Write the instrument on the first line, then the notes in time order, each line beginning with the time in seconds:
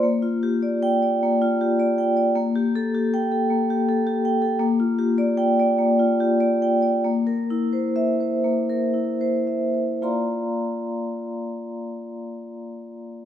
vibraphone
0.03 A#3
0.22 F4
0.43 G4
0.63 D5
0.83 G5
1.03 D5
1.23 A#3
1.42 F4
1.61 G4
1.80 D5
1.98 G5
2.17 D5
2.36 A#3
2.55 G4
2.76 A4
2.95 G4
3.14 G5
3.32 A4
3.50 A#3
3.70 G4
3.89 A4
4.07 G4
4.25 G5
4.42 A4
4.60 A#3
4.80 F4
4.98 G4
5.18 D5
5.37 G5
5.59 D5
5.79 A#3
5.99 F4
6.20 G4
6.40 D5
6.62 G5
6.82 D5
7.05 A#3
7.27 A#4
7.50 E4
7.73 C5
7.96 E5
8.20 C5
8.44 A#3
8.69 A#4
8.94 E4
9.21 C5
9.47 E5
9.74 C5
10.02 A#3 F4 D5 F5 A#5 C6